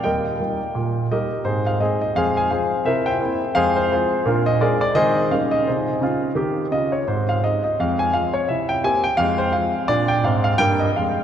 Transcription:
X:1
M:4/4
L:1/8
Q:"Swing" 1/4=171
K:Ab
V:1 name="Grand piano"
[Beg]6 [GBe]2 | [EAc] f [Ace] e [Acf] a [Acf]2 | [Bc=e] [ceg]3 [Acf] c [FAc]2 | [=DFB] e [AB=d] d [Ace]2 f e |
[EAc]6 e d | c f e e f a f d | =e g a g f c f2 | =d g f f g e f2 |]
V:2 name="Grand piano" clef=bass
[E,,G,]2 [G,B,E]2 B,,2 [G,B,E]2 | [A,,C]2 [A,CE]2 [F,,A,]2 [A,CF]2 | [C,=E]2 [B,CE]2 [F,,A,]2 [A,C]2 | B,,2 [A,=DF]2 [E,A,CE]2 [_D,G,B,E]2 |
C,2 [D,F]2 [E,G]2 [D,F]2 | [A,,C]2 [A,CE]2 [F,,A,]2 [A,CF]2 | [C,=E]2 [B,CG]2 [F,,A,]2 [A,CF]2 | [B,,=D]2 [A,,C]2 [G,,B,]2 [F,,A,]2 |]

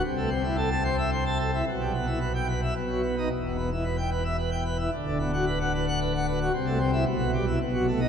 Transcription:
X:1
M:3/4
L:1/16
Q:1/4=111
K:Em
V:1 name="Pipe organ"
C, A, C E A a c e c a A E | B,, G, B, E B g B e B,, F, B, ^D | E,, B,, B, E B g B e B g B E | D,, D, B, F B f B f B f B F |
C, A, C E B,, B, G, E B,, F, A, ^D |]
V:2 name="Pipe organ" clef=bass
C,,12 | B,,,8 B,,,4 | E,,,12 | D,,,12 |
C,,4 B,,,4 B,,,4 |]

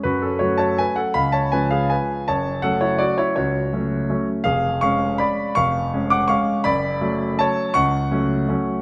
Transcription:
X:1
M:3/4
L:1/8
Q:1/4=164
K:F#m
V:1 name="Grand piano"
[FB] [CA] [Fc] [ca] [Bg] [Af] | [^eb] [ca] [Bg] [Ge] [Bg]2 | [ca]2 [Af] [Ec] [Fd] [Ec] | [Fc]4- [Fc] z |
[G^e]2 [ec']2 [db]2 | [^ec']3 [fd'] [ec']2 | [db]4 [ca]2 | [fc']6 |]
V:2 name="Grand piano" clef=bass
F,,2 [F,A,C]4 | C,,2 [^E,G,C]4 | F,,,2 [F,A,C]4 | C,,2 [F,A,C]2 [F,A,C]2 |
^E,,,2 [G,C]4 | ^E,,,2 [G,C]2 [G,C]2 | F,,,2 [F,A,C]4 | C,,2 [F,A,C]2 [F,A,C]2 |]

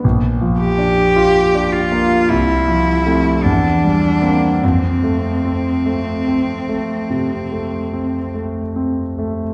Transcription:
X:1
M:4/4
L:1/8
Q:1/4=49
K:F
V:1 name="Cello"
z G2 F E2 D2 | C6 z2 |]
V:2 name="Grand piano"
(3B,,, F, D (3F D B, (3C,, F, [A,C] (3E,, G, [B,C] | (3F,, A, C (3A, C A, (3C, A, C (3A, C A, |]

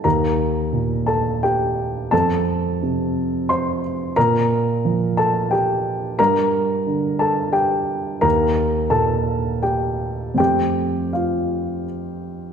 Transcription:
X:1
M:3/4
L:1/8
Q:1/4=87
K:Eblyd
V:1 name="Grand piano"
[Bb]3 [Aa] [Gg]2 | [Aa]4 [cc'] z | [Bb]3 [Aa] [Gg]2 | [Bb]3 [Aa] [Gg]2 |
[Bb]2 [Aa]2 [Gg]2 | [Gg]2 [Ff]2 z2 |]
V:2 name="Grand piano" clef=bass
E,,2 B,,4 | F,,2 C,4 | B,,2 F,4 | G,,2 D,4 |
E,,2 B,,4 | [F,,F,A,C]6 |]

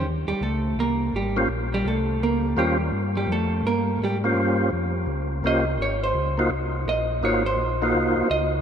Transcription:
X:1
M:4/4
L:1/8
Q:"Swing" 1/4=167
K:Ebmix
V:1 name="Hollow-body jazz guitar"
z [G,G] [=A,=A]2 [B,B]2 [G,G] z | z [G,G] [=A,=A]2 [B,B]2 [G,G] z | z [G,G] [=A,=A]2 [B,B]2 [G,G] z | z6 e2 |
d c3 z2 e2 | d c3 z2 e2 |]
V:2 name="Tonewheel organ"
z6 z [B,DFGc] | z6 [B,DFGc] z | z6 z [B,DFGc]- | [B,DFGc]2 z4 [B,DFGc] z |
z3 [B,EF_Gc] z4 | [B,EF_Gc] z2 [B,EFGc]3 z2 |]
V:3 name="Tonewheel organ" clef=bass
E,, E,, D,,2 C,,2 A,,,2 | B,,,2 C,,2 D,,2 E,,2 | G,,2 F,,2 G,,2 A,,2 | G,,2 F,,2 D,,2 C,,2 |
A,,,2 D,,2 C,,2 B,,,2 | A,,,2 B,,,2 C,, C,, D,,2 |]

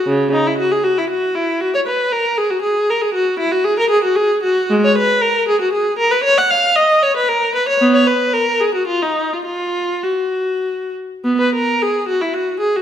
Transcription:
X:1
M:3/4
L:1/16
Q:1/4=115
K:F#mix
V:1 name="Viola"
C,2 D E F G F E F2 E2 | F c B2 A2 G F G2 A G | F2 E F G A G F G2 F2 | [K:F#] G, c B2 A2 G F G2 A B |
c f e2 d2 c B A2 B c | B, c B2 A2 G F E D2 E | E4 F6 z2 | [K:F#mix] B, B A2 G2 F E F2 G F |]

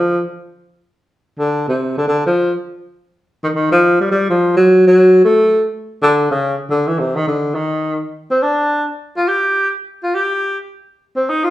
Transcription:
X:1
M:4/4
L:1/8
Q:"Swing" 1/4=208
K:Dphr
V:1 name="Tenor saxophone" clef=bass
F, z6 z | z D,2 C,2 D, D, F,- | F, z6 E, | E, F,2 G, G, F,2 ^F,- |
^F, F,3 A,3 z | z D,2 ^C,2 z D, =E, | C, E, D,2 E,3 z | z C D3 z2 F |
G3 z2 F G2- | G z4 C E F |]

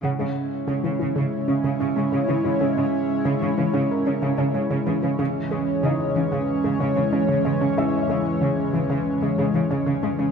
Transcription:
X:1
M:4/4
L:1/16
Q:1/4=93
K:C#dor
V:1 name="Felt piano"
f12 z4 | z8 A8 | z4 [Dd]12 | [Ee]8- [Ee]2 [G,G]6 |]
V:2 name="Analog synth pad"
[G,CEc]16- | [G,CEc]16 | [E,G,Cc]16- | [E,G,Cc]16 |]
V:3 name="Synth pluck" clef=bass
C, G, z2 C, E, E, C, z C C, C G, C, E, E, | C, G, z2 C, E, E, C, z C C, C G, C, E, E, | C, z G, z C, z E, C, z G, C, E, C C, G, C | C, z G, z C, z E, C, z G, C, E, C C, G, C |]
V:4 name="Cello section" clef=bass
C, C, z2 C, C, C, C, z C, C, C, C, C, C, C, | C, C, z2 C, C, C, C, z C, C, C, C, C, C, C, | C, z C, z C, z C, C, z C, C, C, C, C, C, C, | C, z C, z C, z C, C, z C, C, C, C, C, C, C, |]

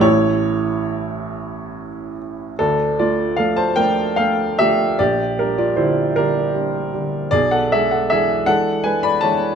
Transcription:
X:1
M:6/8
L:1/16
Q:3/8=50
K:Dm
V:1 name="Grand piano"
[E^c]8- [Ec]2 z2 | [DA]2 [Fd]2 [Af] [ca] [Bg]2 [Af]2 [Ge]2 | [Gd]2 [DB] [Fd] [Ec]2 [DB]6 | [^Gd] [A^f] [Ge] [Af] [Ge]2 [Af]2 [=B^g] [d=b] [^ca]2 |]
V:2 name="Grand piano" clef=bass
[A,,,A,,E,A,]12 | D,,2 [A,D]2 [F,A,D]2 [F,A,D]2 [A,D]2 [F,A,D]2 | B,,,2 G,2 [D,G,D]2 [D,G,]2 [G,D]2 [D,G,D]2 | =B,,,2 [^G,D]2 [E,G,D]2 [E,G,D]2 [G,D]2 [E,G,D]2 |]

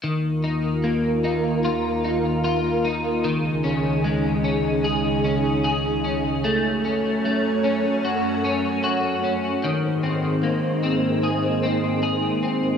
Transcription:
X:1
M:4/4
L:1/8
Q:1/4=75
K:Ebdor
V:1 name="Clean electric guitar"
E, E B, E F E F E | E, D A, D A D A D | =A, D A, D G D G D | E, C B, C A C A C |]
V:2 name="String machine"
[E,,E,B,FB]8 | [D,,D,A,EA]8 | [G,,G,=A,Dd]8 | [A,,A,B,Ec]8 |]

